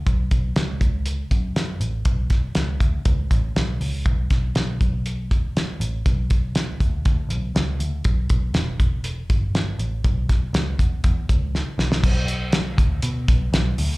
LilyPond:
<<
  \new Staff \with { instrumentName = "Picked electric bass" } { \clef bass \time 4/4 \key b \minor \tempo 4 = 120 b,,8 b,,8 cis,8 cis,4 fis,4 a,,8 | b,,4 cis,8 d,8 cis,8 a,,8 b,,8 cis,8 | b,,8 b,,8 b,,8 b,,4 d,4 a,,8 | b,,4 cis,8 d,8 d,8 b,,8 cis,8 d,8 |
b,,8 b,,8 e,,8 e,,4 g,,4 a,,8 | b,,4 cis,8 e,8 e,8 cis,8. r16 b,,8 | b,,4. d,8 b,8 b,,8 b,,8 d,8 | }
  \new DrumStaff \with { instrumentName = "Drums" } \drummode { \time 4/4 <hh bd>8 <hh bd>8 <hh sn>8 <hh bd>8 hh8 <hh bd>8 <hh sn>8 hh8 | <hh bd>8 <hh bd sn>8 <hh sn>8 <hh bd>8 <hh bd>8 <hh bd>8 <hh sn>8 hho8 | <hh bd>8 <hh bd sn>8 <hh sn>8 <hh bd>8 hh8 <hh bd>8 <hh sn>8 hh8 | <hh bd>8 <hh bd>8 <hh sn>8 <hh bd>8 <hh bd>8 hh8 <hh sn>8 hh8 |
<hh bd>8 <hh bd>8 <hh sn>8 <hh bd>8 hh8 <hh bd>8 <hh sn>8 hh8 | <hh bd>8 <hh bd sn>8 <hh sn>8 <hh bd>8 <hh bd>8 <hh bd>8 sn8 sn16 sn16 | <cymc bd>8 hh8 <hh sn>8 <hh bd>8 hh8 <hh bd>8 <hh sn>8 hho8 | }
>>